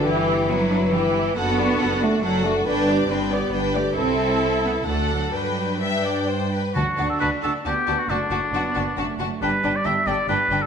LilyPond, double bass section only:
\new Staff \with { instrumentName = "Double bass section" } { \clef bass \time 3/4 \key g \major \tempo 4 = 136 g,,2. | fis,,4 fis,,4 fis,,4 | g,,4 g,,4 g,,4 | c,2 d,4 |
g,2~ g,8 r8 | \key d \major d,8 d,8 d,8 d,8 d,8 d,8 | fis,,8 fis,,8 fis,,8 fis,,8 fis,,8 fis,,8 | g,,8 g,,8 g,,8 g,,8 g,,8 g,,8 | }